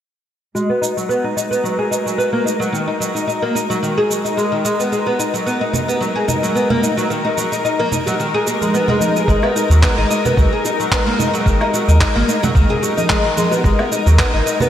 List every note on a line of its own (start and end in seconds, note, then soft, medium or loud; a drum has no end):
0.55 0.69 G#3 medium
0.55 14.69 G#3 medium
0.55 9.29 F#4 medium
0.55 shaker soft
0.70 0.81 B3 medium
0.82 0.95 D#4 medium
0.82 shaker medium
0.97 1.08 F#3 medium
0.97 shaker soft
1.06 1.23 B3 medium
1.06 14.69 D#4 medium
1.10 shaker soft
1.24 1.35 D#4 medium
1.37 1.45 D#4 medium
1.37 shaker medium
1.51 1.63 B3 medium
1.51 shaker soft
1.64 1.77 F#3 medium
1.64 shaker soft
1.73 14.69 A#4 medium
1.79 1.91 G#4 medium
1.91 2.05 D#4 medium
1.91 shaker medium
2.06 2.18 F#3 medium
2.06 shaker soft
2.18 2.32 B3 medium
2.18 shaker soft
2.33 2.44 A#3 medium
2.45 2.54 D#4 medium
2.45 shaker medium
2.60 2.72 F#3 medium
2.60 shaker soft
2.72 2.86 D#3 medium
2.72 shaker soft
2.88 3.00 D#4 medium
3.00 3.14 F#3 medium
3.00 shaker medium
3.15 3.26 D#4 medium
3.15 shaker soft
3.28 3.42 D#4 medium
3.28 shaker soft
3.42 3.54 A#3 medium
3.55 3.64 D#4 medium
3.55 shaker medium
3.70 3.77 F#3 medium
3.70 shaker soft
3.83 3.96 D#3 medium
3.83 shaker soft
3.98 4.09 G#4 medium
4.10 4.24 F#3 medium
4.10 shaker medium
4.25 4.37 D#4 medium
4.25 shaker soft
4.37 4.51 G#3 medium
4.37 shaker soft
4.52 4.63 D#3 medium
4.65 4.79 G#3 medium
4.65 shaker medium
4.80 4.91 B3 medium
4.80 shaker soft
4.92 5.06 G#3 medium
4.92 shaker soft
5.06 5.18 B3 medium
5.06 high bongo soft
5.19 5.32 D#4 medium
5.19 shaker medium
5.34 5.45 F#3 medium
5.34 shaker soft
5.46 5.60 B3 medium
5.46 shaker soft
5.61 5.72 D#4 medium
5.73 5.82 D#4 medium
5.73 low conga medium
5.73 shaker medium
5.88 6.00 B3 medium
5.88 high bongo soft
5.88 shaker soft
6.01 6.14 F#3 medium
6.01 shaker soft
6.16 6.27 G#4 medium
6.28 6.41 D#4 medium
6.28 high bongo soft
6.28 low conga medium
6.28 shaker medium
6.43 6.54 F#3 medium
6.43 shaker soft
6.55 6.69 B3 medium
6.55 shaker soft
6.70 6.82 A#3 medium
6.70 high bongo soft
6.70 low conga medium
6.83 6.91 D#4 medium
6.83 shaker medium
6.97 7.09 F#3 medium
6.97 shaker soft
7.10 7.23 D#3 medium
7.10 shaker soft
7.25 7.37 D#4 medium
7.25 high bongo soft
7.37 7.51 F#3 medium
7.37 high conga soft
7.37 shaker medium
7.52 7.64 D#4 medium
7.52 shaker soft
7.65 7.79 D#4 medium
7.65 shaker soft
7.79 7.91 A#3 loud
7.79 high conga soft
7.92 8.00 D#4 medium
7.92 low conga medium
7.92 shaker medium
8.06 8.14 F#3 loud
8.06 high bongo medium
8.06 shaker soft
8.20 8.33 D#3 medium
8.20 shaker soft
8.34 8.46 G#4 medium
8.46 8.55 A#3 medium
8.46 high bongo soft
8.46 shaker medium
8.61 8.73 G#3 medium
8.61 high conga medium
8.61 shaker soft
8.74 8.87 B3 medium
8.74 shaker soft
8.88 9.00 G#3 loud
8.88 low conga medium
9.01 9.15 D#4 medium
9.01 high conga medium
9.01 shaker medium
9.16 9.28 G#4 medium
9.16 high bongo medium
9.16 shaker soft
9.28 9.37 G#1 medium
9.28 9.42 G#3 medium
9.28 14.69 G#4 medium
9.28 kick loud
9.28 shaker soft
9.42 9.54 B3 medium
9.42 high bongo soft
9.42 low woodblock medium
9.56 9.69 D#4 medium
9.56 shaker medium
9.70 9.85 D#2 medium
9.70 9.82 F#3 medium
9.70 shaker soft
9.83 9.97 B3 medium
9.83 kick loud
9.83 clap medium
9.83 shaker soft
9.97 10.05 G#1 medium
9.97 10.09 D#4 medium
10.10 10.18 D#4 medium
10.10 shaker medium
10.25 10.36 B3 medium
10.25 high bongo medium
10.25 low conga medium
10.25 shaker soft
10.37 10.46 C#2 medium
10.37 10.51 F#3 medium
10.37 kick medium
10.37 shaker soft
10.52 10.64 G#4 medium
10.65 10.78 D#4 medium
10.65 high bongo soft
10.65 shaker medium
10.80 10.91 F#3 medium
10.80 shaker soft
10.92 11.06 B3 medium
10.92 kick loud
10.92 clap loud
10.92 shaker soft
11.07 11.18 A#3 medium
11.07 high bongo soft
11.19 11.27 D#4 medium
11.19 low conga medium
11.19 shaker medium
11.34 11.46 F#3 medium
11.34 shaker soft
11.46 11.55 G#1 medium
11.46 11.59 D#3 medium
11.46 kick loud
11.46 shaker soft
11.61 11.73 D#4 medium
11.61 high bongo medium
11.61 low woodblock medium
11.74 11.87 F#3 medium
11.74 shaker medium
11.88 12.04 D#2 medium
11.88 12.00 D#4 medium
11.88 shaker soft
12.01 12.15 D#4 medium
12.01 kick loud
12.01 clap loud
12.01 shaker soft
12.15 12.23 G#1 medium
12.15 12.27 A#3 medium
12.29 12.37 D#4 medium
12.29 shaker medium
12.42 12.50 F#3 loud
12.42 high bongo soft
12.42 low conga loud
12.42 shaker soft
12.55 12.64 C#2 medium
12.55 12.69 D#3 medium
12.55 kick loud
12.55 shaker soft
12.69 12.82 G#4 medium
12.69 low conga medium
12.83 12.97 F#3 medium
12.83 high bongo soft
12.83 shaker medium
12.97 13.09 D#4 medium
12.97 high conga medium
12.97 shaker soft
13.09 13.24 G#3 medium
13.09 kick loud
13.09 clap loud
13.09 shaker soft
13.24 13.36 D#3 medium
13.37 13.51 G#3 medium
13.37 high conga medium
13.37 shaker medium
13.51 13.63 B3 medium
13.51 high bongo medium
13.51 shaker soft
13.64 13.73 G#1 medium
13.64 13.78 G#3 medium
13.64 kick loud
13.64 shaker soft
13.79 13.90 B3 medium
13.79 high bongo soft
13.79 low woodblock medium
13.92 14.05 D#4 medium
13.92 shaker medium
14.06 14.22 D#2 medium
14.06 14.18 F#3 medium
14.06 shaker soft
14.19 14.33 B3 medium
14.19 kick loud
14.19 clap medium
14.19 shaker soft
14.34 14.41 G#1 medium
14.34 14.45 D#4 medium
14.46 14.54 D#4 medium
14.46 shaker medium
14.60 14.69 B3 medium
14.60 high bongo soft
14.60 low conga medium
14.60 shaker soft